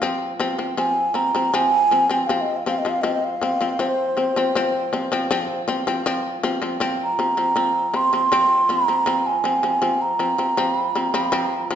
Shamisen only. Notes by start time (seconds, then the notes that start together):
0.02 F3 C4
0.40 F3 C4
0.59 F3 C4
0.77 F3 C4
1.14 F3 C4
1.35 F3 C4
1.54 F3 C4
1.91 F3 C4
2.09 F3 C4
2.29 F3 C4
2.66 F3 C4
2.85 F3 C4
3.03 F3 C4
3.41 F3 C4
3.61 F3 C4
3.79 F3 C4
4.17 F3 C4
4.36 F3 C4
4.55 F3 C4
4.93 F3 C4
5.12 F3 C4
5.31 F3 C4
5.68 F3 C4
5.87 F3 C4
6.06 F3 C4
6.43 F3 C4
6.62 F3 C4
6.80 F3 C4
7.19 F3 C4
7.37 F3 C4
7.56 F3 C4
7.94 F3 C4
8.13 F3 C4
8.32 F3 C4
8.69 F3 C4
8.88 F3 C4
9.06 F3 C4
9.44 F3 C4
9.63 F3 C4
9.82 F3 C4
10.19 F3 C4
10.38 F3 C4
10.57 F3 C4
10.95 F3 C4
11.14 F3 C4
11.32 F3 C4
11.71 F3 C4